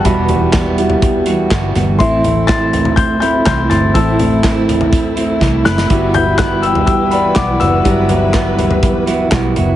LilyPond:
<<
  \new Staff \with { instrumentName = "Grand piano" } { \time 4/4 \key e \minor \tempo 4 = 123 << { <e'' b''>4 r2. | <e'' c'''>4 <c''' a'''>4 <c''' g'''>8 <b'' g'''>8 <c''' g'''>8 <c''' a'''>8 | <a'' e'''>4 r2 r8 <b'' fis'''>8~ | <b'' fis'''>8 <b'' g'''>8 <b'' fis'''>8 <g'' e'''>8 <g'' e'''>8 <d'' b''>8 <fis'' d'''>8 <fis'' e'''>8~ |
<fis'' e'''>2~ <fis'' e'''>8 r4. | } \\ { <g e' fis'>8 r4 <g e' fis'>8 r2 | <a c' e'>8 r2. r8 | <a c' e'>8 r2. r8 | <g e' fis'>8 r4. <g e' fis'>8 r4. |
<fis g e'>8 r2. r8 | } >> }
  \new Staff \with { instrumentName = "String section" } { \time 4/4 \key e \minor << { <b fis'>1 | <a c'>1~ | <a c'>1 | fis'1 |
r1 | } \\ { <e g>1 | e'1~ | e'1 | <e b'>1~ |
<e b'>1 | } >> }
  \new Staff \with { instrumentName = "Steel-string acoustic guitar" } { \time 4/4 \key e \minor <e, b, e g b fis'>8 <e g b fis'>8 <e g b fis'>4. <e g b fis'>8 <e g b fis'>8 <e g b fis'>8 | <a, e a c' e'>8 <a c' e'>8 <e a c' e'>4. <a c' e'>8 <e a c' e'>8 <a c' e'>8 | <a, e a c' e'>8 <a c' e'>8 <e a c' e'>4. <a c' e'>8 <e a c' e'>8 <a c' e'>8 | <g b e' fis'>8 <b e' fis'>8 <g b e' fis'>4. <b e' fis'>8 <g b e' fis'>8 <b e' fis'>8 |
<g b e' fis'>8 <b e' fis'>8 <g b e' fis'>4. <b e' fis'>8 <g b e' fis'>8 <b e' fis'>8 | }
  \new Staff \with { instrumentName = "Fingered electric bass" } { \clef bass \time 4/4 \key e \minor e,,2. g,,8 g,,8 | a,,2. c,8 g,,8 | a,,2. c,8 fis,,8 | g,,2. b,,8 fis,,8 |
g,,2. b,,8 fis,,8 | }
  \new DrumStaff \with { instrumentName = "Drums" } \drummode { \time 4/4 <hh bd>8 <hh tomfh>8 <hc hh bd sn>8 hh16 tomfh16 <hh bd>8 hh8 <hc hh bd sn>8 <hh sn tomfh>8 | <hh bd>8 <hh tomfh>8 <hc hh bd sn>8 <hh tomfh>16 tomfh16 <hh bd>8 hh8 <hc hh bd sn>8 <hh sn tomfh>8 | <hh bd>8 <hh tomfh>8 <hc hh bd sn>8 <hh tomfh>16 tomfh16 <hh bd>8 hh8 <bd sn>8 sn16 sn16 | <hh bd>8 <hh tomfh>8 <hc hh bd sn>8 hh16 tomfh16 <hh bd>8 hh8 <hc hh bd sn>8 <hh sn tomfh>8 |
<hh bd>8 <hh tomfh>8 <hc hh bd sn>8 <hh tomfh>16 tomfh16 <hh bd>8 hh8 <hc hh bd sn>8 <hh tomfh>8 | }
>>